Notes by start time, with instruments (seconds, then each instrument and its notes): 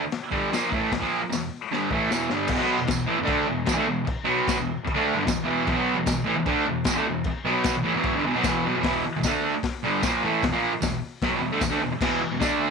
0.04 muted distorted electric guitar stroke
0.11 snare, open hi-hat
0.31 distorted electric guitar G2 D3 G3, kick
0.51 distorted electric guitar A#2 F3 A#3, snare, open hi-hat, tambourine
0.72 distorted electric guitar A2 E3 A3, kick
0.91 distorted electric guitar E2 B2, kick, snare, open hi-hat
1.00 distorted electric guitar A#2 F3 A#3, kick
1.20 muted distorted electric guitar stroke
1.30 distorted electric guitar E2 B2, snare, open hi-hat, tambourine
1.72 distorted electric guitar G2 D3 G3, snare
1.91 distorted electric guitar A2 E3 A3, kick
2.10 distorted electric guitar E2 B2 E3, snare, tambourine
2.30 distorted electric guitar G2 D3 G3, snare
2.48 distorted electric guitar E2 B2, kick, crash
2.58 distorted electric guitar B2 F#3 B3
2.77 distorted electric guitar E2 B2
2.87 distorted electric guitar E2 B2, kick, snare, tambourine, crash
3.06 distorted electric guitar A2 E3
3.16 distorted electric guitar E2 B2
3.23 distorted electric guitar D3 A3 D4
3.27 kick, crash
3.47 distorted electric guitar E2 B2
3.66 distorted electric guitar E2 B2, kick, snare, tambourine, crash
3.75 distorted electric guitar D3 A3
3.87 distorted electric guitar E2 B2
4.05 muted distorted electric guitar stroke, kick, crash
4.25 distorted electric guitar B2 F#3 B3
4.48 kick, snare, tambourine, crash
4.56 distorted electric guitar E2 B2
4.85 muted distorted electric guitar stroke, kick, crash
4.94 distorted electric guitar D3 A3 D4
5.14 distorted electric guitar G2 D3
5.26 distorted electric guitar E2 B2, kick, snare, tambourine, crash
5.44 distorted electric guitar E2 B2 E3
5.65 distorted electric guitar E2 B2, kick, crash
5.75 distorted electric guitar B2 F#3 B3
5.95 distorted electric guitar E2 B2
6.06 distorted electric guitar E2 B2, kick, snare, tambourine, crash
6.25 distorted electric guitar A2 E3
6.37 distorted electric guitar E2 B2
6.46 distorted electric guitar D3 A3 D4, kick, crash
6.66 distorted electric guitar E2 B2
6.84 distorted electric guitar E2 B2, kick, snare, tambourine, crash
6.97 distorted electric guitar D3 A3
7.06 distorted electric guitar E2 B2
7.24 muted distorted electric guitar stroke, kick, crash
7.45 distorted electric guitar B2 F#3 B3
7.64 kick, snare, tambourine, crash
7.76 distorted electric guitar E2 B2
7.84 distorted electric guitar A2 E3
7.94 distorted electric guitar E2 B2 E3
8.04 kick, crash
8.14 distorted electric guitar G2 D3
8.24 distorted electric guitar E2 B2
8.35 distorted electric guitar B2 F#3
8.43 distorted electric guitar E2 B2 E3, kick, snare, tambourine, crash
8.66 distorted electric guitar B2 F#3
8.75 distorted electric guitar E2 B2
8.83 distorted electric guitar E2 B2 E3, kick, snare, open hi-hat
9.06 muted distorted electric guitar stroke
9.16 distorted electric guitar E2 B2
9.23 distorted electric guitar D3 A3 D4, kick, snare, open hi-hat, tambourine
9.55 muted distorted electric guitar stroke
9.63 kick, snare, open hi-hat
9.84 distorted electric guitar G2 D3 G3
10.03 distorted electric guitar A#2 F3 A#3, kick, snare, open hi-hat, tambourine
10.23 distorted electric guitar A2 E3 A3
10.43 distorted electric guitar E2 B2, kick, snare, open hi-hat
10.52 distorted electric guitar A#2 F3 A#3
10.71 muted distorted electric guitar stroke
10.82 distorted electric guitar E2 B2, kick, snare, open hi-hat, tambourine
11.21 distorted electric guitar B2 F#3, kick, snare, open hi-hat
11.32 distorted electric guitar E2 B2
11.41 distorted electric guitar E2 B2
11.52 distorted electric guitar D3 A3
11.60 distorted electric guitar E2 B2, kick, snare, open hi-hat, tambourine
11.70 distorted electric guitar D3 A3
11.82 distorted electric guitar E2 B2
11.92 muted distorted electric guitar stroke
12.01 distorted electric guitar E2 B2 E3, kick, snare, crash
12.21 muted distorted electric guitar stroke
12.31 distorted electric guitar E2 B2
12.39 distorted electric guitar D3 A3 D4, kick, snare, open hi-hat, tambourine